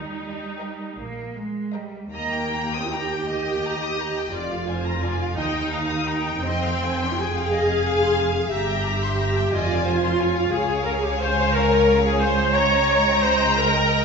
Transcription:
Already playing: D#2 G3 D#4
0.60 A#4 D#5 G5
0.97 A#1 A#3
1.36 G#3
1.74 G3 A#4 D#5 G5
2.12 D#2 A#3 D#5 G5 A#5
2.33 G5
2.54 A#5
2.73 D#6
2.90 G4 A#5
3.12 G5
3.29 D#5
3.47 G5
3.66 A#5
3.83 D#6
4.00 A#5
4.18 G5
4.32 F1 F2 F4 D5
4.52 F5
4.67 G#5
4.71 C5
4.86 A#5
5.03 D5 G#5
5.23 F5
5.37 D#2 D#4 D#5 G5
5.54 G5
5.72 F5 A#5
5.89 D#6
6.07 G5 A#5
6.27 G5
6.42 F1 F2 C4 D#5 C6
6.62 F5
6.83 G#5
7.01 C6
7.18 G#4 G#5
7.37 F5
7.52 D#5 F5
7.70 F5
7.86 G#5
8.03 C6
8.18 G#5
8.35 F5
8.49 G1 G2 G4 E5 A#5
8.67 G5
8.84 A#5
9.03 C6
9.19 A#5
9.36 G5
9.52 F1 F2 F4 D5 D#5 G#5
9.70 F5
9.85 C5 G#5
10.05 C6
10.19 C#5 G#5
10.36 F5
10.52 C#2 G#4 F5 G#5
10.85 A#4
10.94 G#4
11.03 G4
11.11 G#4
11.20 C5
11.52 A#4
12.04 G#4
12.20 C5
12.53 C#5 D#5 G5 A#5
13.22 C5
13.57 A#4

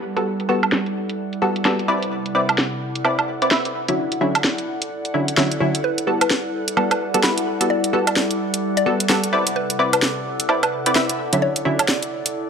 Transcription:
Already playing: G3 E4 A4 D5 F#5
0.16 G3 B3 F#4 A4, closed hi-hat
0.40 closed hi-hat
0.49 G3 B3 F#4 A4
0.63 closed hi-hat, high woodblock
0.72 snare
0.86 closed hi-hat
1.09 closed hi-hat
1.33 closed hi-hat
1.42 G3 B3 F#4 A4
1.56 closed hi-hat
1.65 G3 B3 F#4 A4, snare
1.79 closed hi-hat
1.88 C3 C4 E4 B4 D5
2.02 closed hi-hat
2.26 closed hi-hat
2.35 C4 E4 B4 D5
2.49 closed hi-hat, high woodblock
2.58 snare
2.95 closed hi-hat
3.05 C4 E4 B4 D5, high woodblock
3.19 closed hi-hat, high woodblock
3.42 C4 E4 B4 D5, closed hi-hat
3.51 C4 E4 B4 E5, snare
3.65 closed hi-hat
3.88 D3 F#3 C#4 E4, closed hi-hat
4.12 closed hi-hat
4.21 D3 F#3 C#4 E4
4.35 closed hi-hat, high woodblock
4.44 snare
4.58 closed hi-hat
4.82 closed hi-hat
5.05 closed hi-hat
5.14 D3 F#3 C#4 E4
5.28 closed hi-hat
5.37 D3 F#3 C#4 E4, snare
5.52 closed hi-hat
5.60 D3 F#3 C#4 E4
5.75 closed hi-hat
5.84 G3 B4
5.98 closed hi-hat
6.07 G3 B3 F#4 A4
6.21 B4, closed hi-hat, high woodblock
6.30 snare
6.68 closed hi-hat
6.77 G3 B3 F#4 A4, high woodblock
6.91 B4, closed hi-hat, high woodblock
7.14 G3 B3 F#4 A4, closed hi-hat
7.23 G3 B3 F#4 B4, snare
7.38 closed hi-hat
7.61 G3 B3 F#4 A4, closed hi-hat
7.70 D5
7.84 closed hi-hat
7.93 G3 B3 F#4 A4
8.07 D5, closed hi-hat, high woodblock
8.16 snare
8.31 closed hi-hat
8.54 closed hi-hat
8.77 D5, closed hi-hat
8.86 G3 B3 F#4 A4
9.00 closed hi-hat
9.09 G3 B3 F#4 A4, snare
9.24 closed hi-hat
9.33 C3 C4 E4 B4 D5
9.47 closed hi-hat
9.56 B4
9.70 closed hi-hat
9.79 C4 E4 B4 D5
9.93 B4, closed hi-hat, high woodblock
10.02 snare
10.40 closed hi-hat
10.49 C4 E4 B4 D5, high woodblock
10.63 B4, closed hi-hat, high woodblock
10.86 C4 E4 B4 D5, closed hi-hat
10.95 C4 E4 B4 E5, snare
11.09 closed hi-hat
11.33 D3 F#3 C#4 E4, closed hi-hat
11.42 C#5
11.56 closed hi-hat
11.65 D3 F#3 C#4 E4
11.79 C#5, closed hi-hat, high woodblock
11.88 snare
12.03 closed hi-hat
12.26 closed hi-hat

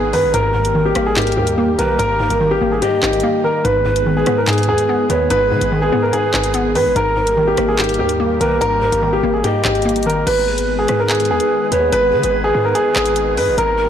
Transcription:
Already playing: G#1 G#2 D#3 G#3 B3 G#4 B4
0.13 G#2 D#3 B4, open hi-hat
0.23 G#1
0.34 G#1 G#2 G3 A#3 G4 A#4, closed hi-hat
0.54 G#2 A#4
0.65 closed hi-hat
0.75 D#3
0.86 G4
0.95 G#1 A#3, cross-stick, closed hi-hat
1.06 G#4
1.17 G#2 G4, clap, closed hi-hat
1.22 closed hi-hat
1.27 closed hi-hat
1.32 closed hi-hat
1.37 D#2 G#2 G4
1.47 closed hi-hat
1.58 A#3
1.79 B1 D#3 A#4 B4, closed hi-hat
1.99 G#1 G#2 A#4, closed hi-hat
2.20 G1 G#2 A#4
2.30 G#1, closed hi-hat
2.40 D#3
2.51 G4
2.61 G#1 A#3
2.72 G#4
2.82 G#2 G4 D#5, closed hi-hat
3.03 G#1 G#2 G4, cross-stick, clap
3.13 closed hi-hat
3.20 A#3, closed hi-hat
3.44 D#3 A#4
3.65 G#1 G#2 G#3 B3 G#4 B4, closed hi-hat
3.86 G#2 B4
3.96 closed hi-hat
4.06 D#3
4.17 G#4
4.26 G#2 B3, cross-stick, closed hi-hat
4.38 A#4
4.47 G#2 G#4, clap, closed hi-hat
4.53 closed hi-hat
4.58 closed hi-hat
4.63 closed hi-hat
4.68 D#2 G#2 G#4
4.78 closed hi-hat
4.89 B3
5.10 D#2 D#3 B4 C#5, closed hi-hat
5.30 G#1 G#2 B4, closed hi-hat
5.51 G#2 D#3 B4
5.61 G#1, closed hi-hat
5.72 D#3
5.82 G#4
5.92 G#2 B3
6.03 A#4
6.13 G#2 G#4, closed hi-hat
6.34 G#1 G#2 G#4, cross-stick, clap
6.44 closed hi-hat
6.54 B3, closed hi-hat
6.75 G#2 D#3 B4, open hi-hat
6.85 G#1
6.96 G#1 G#2 D#3 G3 A#3 G4 A#4, closed hi-hat
7.16 G#2 A#4
7.27 closed hi-hat
7.37 D#3
7.48 G4
7.57 G#1 A#3, cross-stick, closed hi-hat
7.69 G#4
7.79 G#2 G4, clap, closed hi-hat
7.84 closed hi-hat
7.89 closed hi-hat
7.94 closed hi-hat
7.99 D#2 G#2 G4
8.09 closed hi-hat
8.20 A#3
8.41 B1 D#3 A#4 B4, closed hi-hat
8.61 G#1 G#2 A#4, closed hi-hat
8.82 G1 G#2 A#4
8.92 G#1, closed hi-hat
9.03 D#3
9.13 G4
9.23 G#1 A#3
9.34 G#4
9.44 G#2 G4 D#5, closed hi-hat
9.65 G#1 G#2 G4, cross-stick, clap
9.75 closed hi-hat
9.82 A#3, closed hi-hat
9.89 closed hi-hat
9.96 closed hi-hat
10.03 D#3 A#4, closed hi-hat
10.10 closed hi-hat
10.27 G#1 D#3 G#3 B3 G#4 B4, closed hi-hat, crash
10.48 B4
10.58 closed hi-hat
10.79 G#4
10.88 G#2, cross-stick, closed hi-hat
11.00 A#4
11.09 G#4, clap, closed hi-hat
11.15 closed hi-hat
11.20 closed hi-hat
11.25 closed hi-hat
11.30 D#2 G#4
11.40 closed hi-hat
11.72 D#2 B4 C#5, closed hi-hat
11.92 G#1 B4, closed hi-hat
12.13 D#3 B4
12.23 G#1, closed hi-hat
12.44 G#4
12.54 G#2
12.65 A#4
12.75 G#4, closed hi-hat
12.96 G#1 G#4, cross-stick, clap
13.06 closed hi-hat
13.16 closed hi-hat
13.37 G#2 B4, open hi-hat
13.48 G#1
13.58 G#1 G3 A#3 G4 A#4, closed hi-hat
13.78 A#4

